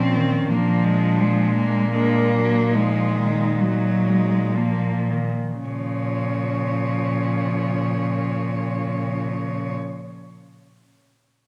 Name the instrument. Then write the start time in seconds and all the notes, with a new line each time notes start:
cello
Already playing: A#2 F3 C4 C#4
0.15 D#3
0.49 A#2 F3 A#3 D4
0.84 G#3
1.20 F3 G#3
1.55 A#3
1.93 G#3 A#3 D4
2.33 F#3 D4
2.72 F3 G#3 D#4
3.16 D#3
3.61 F#3 D#4
4.07 G#3
4.56 F3 A#3
5.10 D#3
5.64 C#3 F3 C#5
5.68 A#2